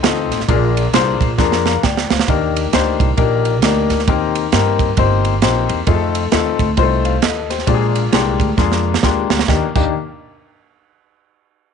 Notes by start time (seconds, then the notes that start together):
0.03 D2 C4 D#4 F4 A4 D#5, snare, ride
0.31 A1, snare, ride
0.40 snare
0.48 A#1 A#2 A#3 D4 F4 G#4 A#4, kick, ride
0.77 ride
0.93 C2 A#3 D4 F4 G#4 C5, snare, ride
1.21 A#1, kick, ride
1.38 F2 A#3 D4 F4 G#4 A#4, kick, snare
1.52 snare
1.66 F5 A#5, snare
1.83 D2 D5 G5, kick, snare
1.97 snare
2.10 D2 C5 F5, snare
2.19 snare
2.28 D#2 D#3 A#3 D4 D#4 G4 A#4, kick, ride
2.57 ride
2.73 D2 A#3 D4 D#4 G4 C5, snare, ride
3.00 C2, kick, ride
3.17 A#1 A#3 D4 D#4 G4 A#4, kick, ride
3.45 ride
3.62 D2 A#3 D4 D#4 G4 A#4, snare, ride
3.90 D2, snare, ride
3.99 snare
4.07 D#2 D#3 A#3 C4 D#4 G4 A#4, kick, ride
4.35 ride
4.52 G2 A#3 C4 D#4 G4 A#4, snare, ride
4.79 kick, ride
4.97 G1 A#3 C4 D#4 G4 C5, kick, ride
5.25 ride
5.42 A#1 A#3 C4 D#4 G4 C5, snare, ride
5.69 E2, ride
5.87 F2 A3 C4 D#4 F4 G#4, kick, ride
5.94 A4
6.15 ride
6.32 D#2 A3 C4 D#4 F4 A4, snare, ride
6.59 D2, kick, ride
6.77 C2 G3 C4 D#4 F4 C5, kick, ride
6.82 A3
7.05 C5 F5, ride
7.22 D#2 A4 D#5, snare, ride
7.50 G4 C5, snare, ride
7.59 snare
7.67 A#1 A#2 G#3 A#3 D4 F4 G4, kick, ride
7.74 G#4
7.95 ride
8.12 C2 G#3 A#3 D4 F4 G4, snare, ride
8.40 D2, kick, ride
8.57 F2 G#3 A#3 D4 F4 G#4, kick, snare
8.72 snare
8.94 snare
9.03 D#2 G#3 A#3 D4 F4 G4, kick, snare
9.30 D2, snare
9.39 snare
9.48 D#2 A#3 D4 D#4 G4, kick, snare
9.75 D#2 A#3 D4 D#4 G4, kick, crash